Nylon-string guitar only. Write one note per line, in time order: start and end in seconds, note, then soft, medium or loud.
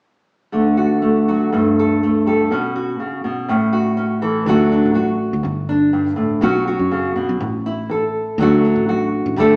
0.52 1.48 D3 medium
0.52 1.01 A3 soft
0.77 1.26 F#4 soft
1.02 1.51 A3 soft
1.28 1.49 F#3 soft
1.28 1.52 F#4 soft
1.52 2.47 G2 medium
1.52 2.01 A3 soft
1.79 2.26 A4 medium
2.03 2.51 A3 soft
2.26 2.47 G3 soft
2.26 2.48 A4 soft
2.51 2.99 B2 medium
2.51 3.46 C#4 medium
2.76 3.49 F#4 soft
2.99 3.24 C#3 soft
3.24 3.48 B2 medium
3.49 4.44 A2 medium
3.49 3.96 C#4 medium
3.73 4.22 F#4 medium
3.97 4.43 C#4 medium
4.22 4.46 E3 soft
4.22 4.44 A4 soft
4.46 4.91 D3 medium
4.46 4.93 F#3 medium
4.46 6.42 A3 medium
4.46 4.71 D4 medium
4.46 4.94 F#4 medium
4.72 5.42 D4 soft
4.94 5.39 F#3 medium
4.94 5.44 F#4 soft
5.43 5.88 G2 medium
5.69 6.40 D4 medium
5.93 6.16 G2 medium
6.16 6.42 A2 medium
6.41 6.86 B2 medium
6.41 7.37 F#3 medium
6.41 7.38 C#4 medium
6.41 6.66 F#4 medium
6.68 7.41 F#4 medium
6.91 7.15 C#3 medium
7.16 7.40 B2 medium
7.41 7.85 A2 medium
7.66 8.36 E4 medium
7.89 8.34 E3 medium
7.89 8.37 A4 medium
8.39 8.83 D3 medium
8.39 8.87 F#3 medium
8.39 9.37 A3 medium
8.39 8.64 D4 medium
8.39 8.88 F#4 medium
8.65 9.35 D4 soft
8.89 9.32 F#3 medium
8.89 9.37 F#4 medium
9.37 9.56 G2 medium
9.37 9.56 G3 medium
9.37 9.56 A3 medium
9.37 9.56 D4 medium
9.37 9.56 A4 medium